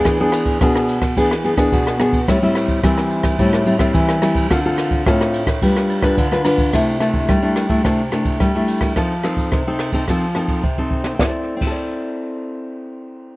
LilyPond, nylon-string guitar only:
\new Staff \with { instrumentName = "Nylon-string guitar" } { \time 4/4 \key c \major \tempo 4 = 108 << { <b d' aes'>16 <b d' gis'>8. <b d' gis'>8. r16 <b d' gis'>16 r16 <b d' gis'>16 <b d' gis'>8. <b d' gis'>16 r16 | <g c' e'>16 <g c' e'>8. <g c' e'>4 <g c' e'>8 <g c' e'>16 <g c' e'>8. <g c' e'>8 | <c' f' a'>16 <c' f' a'>8. <c' f' a'>8. r16 <d' f' b'>8. <d' f' b'>8 <d' f' b'>16 <d' f' b'>8 | <a d' e'>8 <a d' e'>8. <a d' e'>8 <a d' e'>16 <a d' e'>16 r16 <a d' e'>8. <a d' e'>8. |
<c' ees' a'>16 r16 <c' ees' a'>8. <c' ees' a'>8 <c' ees' a'>16 <c' ees' a'>16 r16 <c' ees' a'>8 r16 <c' ees' a'>8. | <c' e' a' d''>16 r8 <c' e' a' d''>2.~ <c' e' a' d''>16 | } \\ { e4 b,4 e4 b,4 | a,4 e4 a,4 e4 | d4 a,4 g4 d4 | c4 g4 c4 g4 |
f4 c4 f4 c4 | r1 | } >> }